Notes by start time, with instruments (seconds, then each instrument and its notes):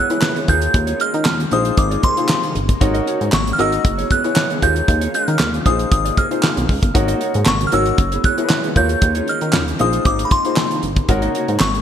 Already playing: string machine E3 G#3 B3 F#4, clean electric guitar B3 E4, synth bell F#6
0.10 grand piano E4 G#4 B4 C#5, muted clean electric guitar stroke, closed hi-hat
0.22 snare, clap
0.35 clean electric guitar B3 E4 G#4 C#5, closed hi-hat
0.48 analog synth bass D#2, string machine D#3 C#4 F4, clean electric guitar A#3 F4 G#4 C#5, grand piano F4 G#4 A#4 C#5, synth bell G6, kick, closed hi-hat
0.61 muted clean electric guitar stroke, closed hi-hat
0.74 analog synth bass D#2, muted clean electric guitar stroke, kick, closed hi-hat
0.87 clean electric guitar A#3 F4 G#4 C#5, closed hi-hat
0.99 clean electric guitar A#3 F4 G#4 D#5, synth bell F6, closed hi-hat
1.13 analog synth bass D#3, muted clean electric guitar stroke, closed hi-hat
1.25 analog synth bass D#2, muted clean electric guitar stroke, snare, clap
1.39 muted clean electric guitar stroke, closed hi-hat
1.51 analog synth bass A#1, string machine C3 A#3 D#4, clean electric guitar A#3 D#4 G#4 C5, grand piano D#4 F4 G#4 C5, synth bell D#6, closed hi-hat
1.65 muted clean electric guitar stroke, closed hi-hat
1.77 analog synth bass G#1, synth bell D6, muted clean electric guitar stroke, kick, closed hi-hat
1.91 clean electric guitar A#3 D#4 G#4 D5, closed hi-hat
2.03 clean electric guitar A#3 D#4 G#4 C5, synth bell C6, kick, closed hi-hat
2.17 grand piano D#4 F4 G#4 C5, muted clean electric guitar stroke, closed hi-hat
2.29 muted clean electric guitar stroke, snare, clap
2.43 muted clean electric guitar stroke, closed hi-hat
2.55 analog synth bass G1, closed hi-hat
2.68 muted clean electric guitar stroke, kick, closed hi-hat
2.81 analog synth bass G#1, string machine C#3 F#4, grand piano D#4 F#4 A#4 C#5, muted clean electric guitar stroke, kick, closed hi-hat
2.94 clean electric guitar C#4 F#4 A#4 D#5, closed hi-hat
3.06 clean electric guitar C#4 F#4 A#4 C#5, closed hi-hat
3.20 analog synth bass G#2, muted clean electric guitar stroke, closed hi-hat
3.32 analog synth bass G#1, synth bell C#6, muted clean electric guitar stroke, snare, clap
3.46 muted clean electric guitar stroke, closed hi-hat
3.53 synth bell F6
3.58 analog synth bass G#1, clean electric guitar C#4 F#4 A#4 C#5, grand piano D#4 F#4 A#4 D#5, synth bell E6, closed hi-hat
3.72 closed hi-hat
3.85 analog synth bass F#1, string machine E3 B3, kick, closed hi-hat
3.98 clean electric guitar B3 E4 G#4 C#5, closed hi-hat
4.10 clean electric guitar B3 E4 G#4 C#5, synth bell F#6, kick, closed hi-hat
4.24 grand piano E4 G#4 B4 C#5, muted clean electric guitar stroke, closed hi-hat
4.36 snare, clap
4.50 clean electric guitar B3 E4 G#4 C#5, closed hi-hat
4.62 analog synth bass D#2, string machine D#3 C#4 F4, clean electric guitar C#4 F4 G#4 C#5, grand piano F4 G#4 A#4 C#5, synth bell G6, kick, closed hi-hat
4.76 muted clean electric guitar stroke, closed hi-hat
4.88 analog synth bass D#2, kick, closed hi-hat
5.01 clean electric guitar C#4 F4 G#4 C#5, closed hi-hat
5.14 clean electric guitar C#4 F4 G#4 D#5, synth bell F6, closed hi-hat
5.27 analog synth bass D#3, muted clean electric guitar stroke, closed hi-hat
5.39 analog synth bass D#2, muted clean electric guitar stroke, snare, clap
5.53 muted clean electric guitar stroke, closed hi-hat
5.65 analog synth bass A#1, string machine C3 A#3 D#4, clean electric guitar A#3 D#4 G#4 C5, grand piano D#4 F4 G#4 C5, synth bell D#6, kick, closed hi-hat
5.79 muted clean electric guitar stroke, closed hi-hat
5.91 analog synth bass G#1, synth bell D#6, muted clean electric guitar stroke, kick, closed hi-hat
6.05 clean electric guitar A#3 D#4 G#4 D5, closed hi-hat
6.17 clean electric guitar A#3 D#4 G#4 C5, synth bell F6, kick, closed hi-hat
6.31 grand piano D#4 F4 G#4 C5, muted clean electric guitar stroke, closed hi-hat
6.43 snare, clap
6.56 analog synth bass B1, muted clean electric guitar stroke, closed hi-hat
6.69 analog synth bass C#2, kick, open hi-hat
6.82 analog synth bass G1, muted clean electric guitar stroke, kick, closed hi-hat
6.94 analog synth bass G#1, string machine C#3 F#4, grand piano D#4 F#4 A#4 C#5, muted clean electric guitar stroke, kick, closed hi-hat
7.08 clean electric guitar A#3 D#4 F#4 D#5, closed hi-hat
7.20 clean electric guitar A#3 D#4 F#4 C#5, closed hi-hat
7.34 analog synth bass G#2, muted clean electric guitar stroke, closed hi-hat
7.46 analog synth bass G#1, synth bell C#6, muted clean electric guitar stroke, snare, clap
7.60 muted clean electric guitar stroke, closed hi-hat
7.67 synth bell F6
7.72 analog synth bass G#1, clean electric guitar A#3 D#4 F#4 C#5, grand piano D#4 F#4 A#4 C#5, synth bell E6, closed hi-hat
7.86 muted clean electric guitar stroke, closed hi-hat
7.98 analog synth bass F#1, string machine E3 B3, muted clean electric guitar stroke, kick, closed hi-hat
8.12 clean electric guitar B3 E4 G#4 C#5, closed hi-hat
8.24 clean electric guitar B3 E4 G#4 C#5, synth bell F#6, kick, closed hi-hat
8.38 grand piano E4 G#4 A#4 C#5, muted clean electric guitar stroke, closed hi-hat
8.44 grand piano B4
8.49 snare, clap
8.63 clean electric guitar B3 E4 G#4 C#5, closed hi-hat
8.75 analog synth bass D#2, string machine D#3 C#4 F4, clean electric guitar A#3 F4 G#4 C#5, grand piano F4 G#4 A#4 C#5, synth bell G6, kick, closed hi-hat
8.89 muted clean electric guitar stroke, closed hi-hat
9.02 analog synth bass D#2, muted clean electric guitar stroke, kick, closed hi-hat
9.15 clean electric guitar A#3 F4 G#4 C#5, closed hi-hat
9.27 clean electric guitar A#3 F4 G#4 D#5, synth bell F6, closed hi-hat
9.41 analog synth bass D#3, muted clean electric guitar stroke, closed hi-hat
9.53 analog synth bass D#2, muted clean electric guitar stroke, snare, clap
9.67 muted clean electric guitar stroke, closed hi-hat
9.79 analog synth bass A#1, string machine C3 A#3 D#4, clean electric guitar A#3 D#4 G#4 C5, grand piano D#4 F4 G#4 C5, synth bell D#6, closed hi-hat
9.93 muted clean electric guitar stroke, closed hi-hat
10.05 analog synth bass G#1, synth bell D6, muted clean electric guitar stroke, kick, closed hi-hat
10.19 muted clean electric guitar stroke, closed hi-hat
10.25 synth bell B5
10.31 synth bell C6, kick, closed hi-hat
10.44 grand piano D#4 F4 G#4 C5, muted clean electric guitar stroke, closed hi-hat
10.56 muted clean electric guitar stroke, snare, clap
10.71 muted clean electric guitar stroke, closed hi-hat
10.83 analog synth bass G1, closed hi-hat
10.96 muted clean electric guitar stroke, kick, closed hi-hat
11.08 analog synth bass G#1, string machine C#3 G#3 A#3 F#4, grand piano D#4 F#4 A#4 C#5, muted clean electric guitar stroke, kick, closed hi-hat
11.22 clean electric guitar A#3 D#4 F#4 D#5, closed hi-hat
11.34 clean electric guitar A#3 D#4 F#4 C#5, closed hi-hat
11.48 analog synth bass G#2, muted clean electric guitar stroke, closed hi-hat
11.60 analog synth bass G#1, synth bell C#6, muted clean electric guitar stroke, snare, clap
11.74 muted clean electric guitar stroke, closed hi-hat